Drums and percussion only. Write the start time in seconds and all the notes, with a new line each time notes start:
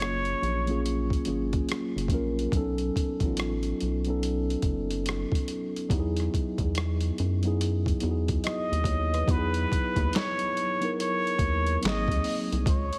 0.02 cross-stick
0.25 closed hi-hat
0.43 closed hi-hat
0.67 closed hi-hat
0.86 closed hi-hat
1.10 kick, closed hi-hat
1.25 closed hi-hat
1.53 kick, closed hi-hat
1.69 cross-stick, closed hi-hat
1.98 closed hi-hat
2.08 kick, closed hi-hat
2.39 closed hi-hat
2.52 kick, closed hi-hat
2.78 closed hi-hat
2.96 kick, closed hi-hat
3.20 kick, closed hi-hat
3.37 cross-stick, closed hi-hat
3.63 closed hi-hat
3.81 closed hi-hat
4.05 closed hi-hat
4.23 closed hi-hat
4.50 closed hi-hat
4.62 kick, closed hi-hat
4.91 closed hi-hat
5.06 cross-stick, closed hi-hat
5.32 kick, closed hi-hat
5.48 closed hi-hat
5.76 closed hi-hat
5.90 kick, closed hi-hat
6.17 cross-stick, closed hi-hat
6.34 kick, closed hi-hat
6.58 kick, closed hi-hat
6.75 cross-stick, closed hi-hat
7.01 closed hi-hat
7.18 closed hi-hat
7.43 closed hi-hat
7.61 closed hi-hat
7.86 kick, closed hi-hat
8.00 closed hi-hat
8.28 kick, closed hi-hat
8.44 cross-stick, closed hi-hat
8.73 closed hi-hat
8.84 kick, closed hi-hat
9.14 cross-stick, closed hi-hat
9.28 kick, closed hi-hat
9.54 closed hi-hat
9.72 kick, closed hi-hat
9.96 kick, closed hi-hat
10.13 snare, clap, closed hi-hat
10.39 closed hi-hat
10.57 closed hi-hat
10.82 closed hi-hat
11.00 closed hi-hat
11.27 closed hi-hat
11.39 kick, closed hi-hat
11.67 closed hi-hat
11.83 snare, clap, closed hi-hat
12.08 kick, closed hi-hat
12.24 open hi-hat
12.52 closed hi-hat
12.66 kick, closed hi-hat
12.93 closed hi-hat